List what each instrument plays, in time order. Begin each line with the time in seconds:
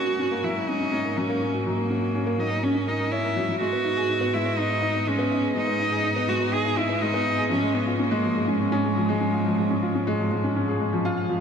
Already playing: cello section G#2, upright piano A#3 C#4, cello F#4
0.07 upright piano F#4
0.19 upright piano C#4
0.31 upright piano A#3
0.44 upright piano F#3, cello E4
0.56 upright piano A#3
0.68 upright piano C#4, cello D#4
0.80 upright piano C#4
0.92 upright piano C#4
1.05 upright piano A#3
1.17 upright piano F#3, cello C#4
1.29 upright piano A#3
1.42 upright piano C#4
1.54 upright piano F#4
1.66 upright piano F#3, cello A#3
1.78 upright piano A#3
1.90 upright piano C#4
2.02 upright piano F#4
2.15 upright piano C#4
2.26 upright piano A#3
2.38 upright piano F#3, cello D#4
2.51 upright piano A#3
2.63 cello C#4, upright piano C#4
2.75 upright piano C#4
2.87 cello D#4, upright piano A#4
2.99 upright piano A#4
3.11 cello E4, upright piano C#5
3.24 upright piano A#4
3.36 upright piano F#3
3.49 upright piano F#3
3.60 cello section G#2, upright piano G#3, cello F#4
3.73 upright piano B3
3.85 upright piano D#4
3.97 upright piano G#4
4.09 upright piano D#4
4.21 upright piano B3
4.33 upright piano G#3, cello E4
4.46 upright piano B3
4.58 upright piano D#4, cello D#4
4.70 upright piano D#4
4.82 upright piano D#4
4.94 upright piano B3
5.07 upright piano G#3, cello C#4
5.19 upright piano B3
5.31 upright piano D#4
5.43 upright piano G#4
5.55 upright piano G#3, cello D#4
5.68 upright piano B3
5.79 upright piano D#4
5.92 upright piano G#4
6.04 upright piano D#4
6.16 upright piano B3
6.28 upright piano G#3, cello F#4
6.40 upright piano B3
6.52 upright piano D#4, cello G#4
6.65 upright piano D#4
6.77 upright piano D#4, cello E4
6.90 upright piano B3
7.02 upright piano G#3, cello D#4
7.14 upright piano B3
7.26 upright piano D#4
7.38 upright piano G#4
7.50 cello section G#2, upright piano F3, cello C#4
7.62 upright piano G#3
7.75 cello B3, upright piano C#4
7.87 upright piano F4
7.99 cello A#3, upright piano C#4
8.11 upright piano G#3
8.24 upright piano F3
8.36 upright piano G#3
8.48 cello G#3, upright piano C#4
8.60 upright piano C#4
8.72 upright piano C#4
8.84 upright piano G#3
8.97 upright piano F3
9.09 upright piano G#3
9.21 upright piano C#4
9.33 upright piano F4
9.46 upright piano F3
9.58 upright piano G#3
9.70 upright piano C#4
9.83 upright piano F4
9.95 upright piano C#4
10.07 upright piano G#3
10.19 upright piano F3
10.32 upright piano G#3
10.44 upright piano C#4
10.56 upright piano C#4
10.68 upright piano G#4
10.81 upright piano G#3
10.93 upright piano F3
11.05 upright piano F4
11.17 upright piano F5
11.30 upright piano F3